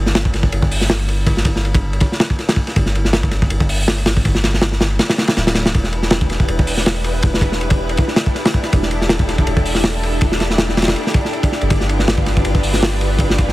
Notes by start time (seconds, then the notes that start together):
Already playing: G1
0.06 snare
0.15 snare, ride
0.25 kick
0.34 snare, ride
0.43 kick
0.52 G1, ride
0.62 kick
0.71 open hi-hat
0.81 snare
0.90 snare, ride
0.99 ride
1.08 ride
1.26 G1, kick, ride
1.37 snare
1.45 kick, ride
1.56 snare
1.65 ride
1.75 kick, ride
1.93 ride
2.00 kick, ride
2.12 snare
2.20 snare, ride
2.30 kick
2.39 snare, ride
2.49 snare, ride
2.56 kick
2.67 snare, ride
2.76 G1, kick, ride
2.86 snare
2.95 ride
3.05 snare
3.13 snare, ride
3.23 kick
3.31 snare, ride
3.42 kick
3.50 G1, ride
3.60 kick
3.69 open hi-hat
3.88 snare, ride
3.98 ride
4.06 snare, ride
4.17 kick
4.25 G1, kick, ride
4.35 snare
4.44 snare, ride
4.54 snare
4.62 snare, ride
4.72 snare
4.81 snare, ride
4.91 ride
4.99 snare, ride
5.10 snare, ride
5.18 snare, ride
5.28 snare, ride
5.37 D1, snare, ride
5.47 snare, ride
5.55 snare, ride
5.66 snare, ride
5.74 E1 D4 E4 G4 B4, kick, ride
5.84 snare
5.93 ride
6.02 snare
6.10 snare, ride
6.21 kick
6.30 snare, ride
6.40 kick
6.48 E1, ride
6.59 kick
6.67 open hi-hat
6.77 snare
6.86 snare, ride
6.96 ride
7.04 ride
7.23 E1, kick, ride
7.34 snare
7.41 kick, ride
7.52 snare
7.61 ride
7.70 kick, ride
7.89 ride
7.97 kick, ride
8.08 snare
8.16 snare, ride
8.26 kick
8.35 snare, ride
8.45 snare, ride
8.54 kick
8.63 snare, ride
8.72 E1 A4, kick, ride
8.82 snare
8.91 ride
9.01 snare
9.09 snare, ride
9.19 kick
9.29 snare, ride
9.38 kick
9.47 E1, ride
9.57 kick
9.65 open hi-hat
9.75 snare
9.84 snare, ride
9.94 ride
10.03 ride
10.21 E1, kick, ride
10.32 snare
10.40 snare, ride
10.50 snare
10.58 snare, ride
10.69 snare
10.77 snare, ride
10.82 snare, ride
10.88 snare, ride
10.96 ride
11.07 snare
11.14 kick, ride
11.25 snare
11.33 ride
11.43 kick, ride
11.52 snare
11.61 G1, ride
11.70 G1 F4 B4, kick, ride
11.81 snare
11.89 ride
11.99 snare
12.08 snare, ride
12.18 kick
12.26 snare, ride
12.37 kick
12.45 G1, ride
12.55 kick
12.63 open hi-hat
12.73 snare
12.82 snare, ride
12.92 ride
13.01 ride
13.18 G1, kick, ride
13.30 snare
13.38 kick, ride
13.48 snare